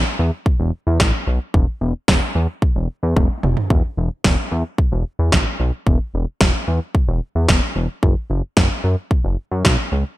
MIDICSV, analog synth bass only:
0, 0, Header, 1, 2, 480
1, 0, Start_track
1, 0, Tempo, 540541
1, 1369, Time_signature, 4, 2, 24, 8
1, 9036, End_track
2, 0, Start_track
2, 0, Title_t, "Analog synth bass"
2, 0, Program_c, 0, 38
2, 169, Note_on_c, 0, 40, 95
2, 275, Note_off_c, 0, 40, 0
2, 529, Note_on_c, 0, 28, 92
2, 635, Note_off_c, 0, 28, 0
2, 770, Note_on_c, 0, 40, 94
2, 875, Note_off_c, 0, 40, 0
2, 891, Note_on_c, 0, 33, 95
2, 996, Note_off_c, 0, 33, 0
2, 1129, Note_on_c, 0, 35, 86
2, 1235, Note_off_c, 0, 35, 0
2, 1369, Note_on_c, 0, 28, 105
2, 1475, Note_off_c, 0, 28, 0
2, 1609, Note_on_c, 0, 28, 104
2, 1715, Note_off_c, 0, 28, 0
2, 1850, Note_on_c, 0, 28, 98
2, 1956, Note_off_c, 0, 28, 0
2, 2089, Note_on_c, 0, 40, 95
2, 2195, Note_off_c, 0, 40, 0
2, 2449, Note_on_c, 0, 28, 88
2, 2555, Note_off_c, 0, 28, 0
2, 2689, Note_on_c, 0, 40, 95
2, 2795, Note_off_c, 0, 40, 0
2, 2811, Note_on_c, 0, 28, 93
2, 2916, Note_off_c, 0, 28, 0
2, 3049, Note_on_c, 0, 28, 94
2, 3155, Note_off_c, 0, 28, 0
2, 3288, Note_on_c, 0, 28, 113
2, 3395, Note_off_c, 0, 28, 0
2, 3529, Note_on_c, 0, 28, 96
2, 3635, Note_off_c, 0, 28, 0
2, 3770, Note_on_c, 0, 28, 101
2, 3875, Note_off_c, 0, 28, 0
2, 4010, Note_on_c, 0, 40, 96
2, 4115, Note_off_c, 0, 40, 0
2, 4369, Note_on_c, 0, 28, 93
2, 4475, Note_off_c, 0, 28, 0
2, 4609, Note_on_c, 0, 40, 93
2, 4715, Note_off_c, 0, 40, 0
2, 4732, Note_on_c, 0, 33, 94
2, 4836, Note_off_c, 0, 33, 0
2, 4970, Note_on_c, 0, 35, 96
2, 5075, Note_off_c, 0, 35, 0
2, 5209, Note_on_c, 0, 28, 105
2, 5315, Note_off_c, 0, 28, 0
2, 5449, Note_on_c, 0, 28, 97
2, 5555, Note_off_c, 0, 28, 0
2, 5690, Note_on_c, 0, 28, 97
2, 5796, Note_off_c, 0, 28, 0
2, 5929, Note_on_c, 0, 40, 93
2, 6035, Note_off_c, 0, 40, 0
2, 6289, Note_on_c, 0, 28, 95
2, 6395, Note_off_c, 0, 28, 0
2, 6529, Note_on_c, 0, 40, 89
2, 6635, Note_off_c, 0, 40, 0
2, 6651, Note_on_c, 0, 28, 102
2, 6756, Note_off_c, 0, 28, 0
2, 6889, Note_on_c, 0, 28, 96
2, 6995, Note_off_c, 0, 28, 0
2, 7129, Note_on_c, 0, 30, 98
2, 7235, Note_off_c, 0, 30, 0
2, 7369, Note_on_c, 0, 30, 94
2, 7475, Note_off_c, 0, 30, 0
2, 7610, Note_on_c, 0, 30, 106
2, 7716, Note_off_c, 0, 30, 0
2, 7849, Note_on_c, 0, 42, 98
2, 7955, Note_off_c, 0, 42, 0
2, 8209, Note_on_c, 0, 30, 88
2, 8315, Note_off_c, 0, 30, 0
2, 8449, Note_on_c, 0, 42, 96
2, 8555, Note_off_c, 0, 42, 0
2, 8572, Note_on_c, 0, 35, 95
2, 8676, Note_off_c, 0, 35, 0
2, 8809, Note_on_c, 0, 37, 86
2, 8915, Note_off_c, 0, 37, 0
2, 9036, End_track
0, 0, End_of_file